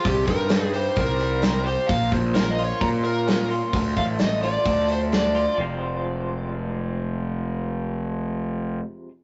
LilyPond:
<<
  \new Staff \with { instrumentName = "Lead electric guitar" } { \time 4/4 \key f \minor \tempo 4 = 130 g'8 bes'4 c''8 bes'4. c''8 | f''8 r8 \tuplet 3/2 { bes'8 ees''8 des''8 } bes''8 bes'4 r8 | r8 f''8 ees''8 d''4 c''8 d''4 | r1 |
r1 | }
  \new Staff \with { instrumentName = "Clean electric guitar" } { \time 4/4 \key f \minor c8 ees8 g8 g'8 c'8 g8 c'8 g'8 | bes,8 f8 bes8 f'8 des'8 bes8 des'8 f'8 | d8 a8 a8 f'8 d'8 a8 d'8 f'8 | <f, c f aes c' f'>1~ |
<f, c f aes c' f'>1 | }
  \new Staff \with { instrumentName = "Picked electric bass" } { \clef bass \time 4/4 \key f \minor c,8 g,4. c,2 | bes,,8 bes,,4. bes,2 | d,8 a,,4. d,2 | f,,1~ |
f,,1 | }
  \new DrumStaff \with { instrumentName = "Drums" } \drummode { \time 4/4 <hho bd>8 <hho bd>8 <hho sn>8 hho8 <hho bd>8 hho8 <hho sn>8 hho8 | <hho bd>8 <hho bd>8 <hho sn>8 hho8 <hho bd>8 hho8 <hho sn>8 hho8 | <hho bd>8 <hho bd>8 <hho sn>8 hho8 <hho bd>8 hho8 <hho sn>8 hho8 | r4 r4 r4 r4 |
r4 r4 r4 r4 | }
>>